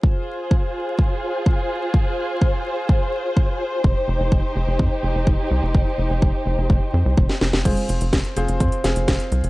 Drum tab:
CC |----------------|----------------|----------------|----------------|
HH |----------------|----------------|----------------|----------------|
SD |----------------|----------------|----------------|-------------ooo|
CG |----------------|----------------|----------------|----------------|
BD |o---o---o---o---|o---o---o---o---|o---o---o---o---|o---o---o---o---|

CC |x---------------|
HH |xxxxxxxxxxxxxxxx|
SD |----o-----o-o---|
CG |o---------------|
BD |o---o---o---o---|